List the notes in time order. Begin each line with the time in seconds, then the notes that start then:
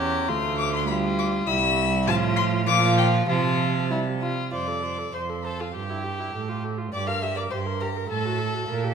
Already playing: E2 C#4 G4
0.00 A#5
0.28 D2 A3 F4 C6
0.58 D6
0.74 C6
0.87 G3 F4 B5
1.19 D6
1.47 C2 G3 E4 E6
2.07 A2 F3 F4 A5
2.36 C6
2.66 A#2 F3 F4 D6
2.98 G5
3.28 C3 F3 F4 A5
3.91 G3 E4
4.22 F4
4.52 F2 C5 D5 D6
4.67 A4
4.83 C5
4.98 A4
5.13 F2 C5 C6
5.29 A4
5.44 A4 C5 A5
5.59 F4 A4 F5
5.74 G2 G4 G5
5.89 E4
6.04 G4
6.19 E4
6.34 A2 A4
6.49 F4
6.64 A4
6.78 F4
6.93 G2 G4 D5 D6
7.07 A#4 F5 F6
7.22 G4 E5 E6
7.36 A#4 D5 D6
7.51 G2 G4 C5 C6
7.66 A#4
7.80 G4 A#4 A#5
7.97 A#4
8.09 A2 A4 A5
8.25 F#4
8.39 A4
8.54 F#4
8.69 A#2 A#4
8.84 G4